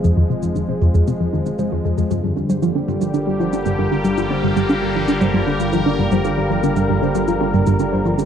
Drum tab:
SH |x--xx--xx--xx--x|x--xx--xx--xx--x|x--xx--xx--xx--x|x--xx--xx--xx--x|
T1 |o-----o-----o---|o-----o-----o---|--o-----o-----o-|----o-----o-----|